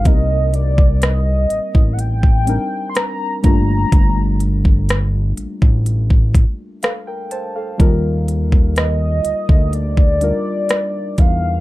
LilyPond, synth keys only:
\new Staff \with { instrumentName = "Synth keys" } { \time 4/4 \key g \minor \tempo 4 = 62 << { r1 | r2. <a' f''>16 <bes' g''>16 <c'' a''>16 <a' f''>16~ | <a' f''>16 r2. r8. | } \\ { <g bes c' ees' bes'>4. r4 <g c' d' ees' bes'>4 <g a bes d' f'>8~ | <g a bes d' f'>4 r2. | <g bes ees' f' bes'>4. r4 <g d' ees' f' bes'>4 r8 | } >> }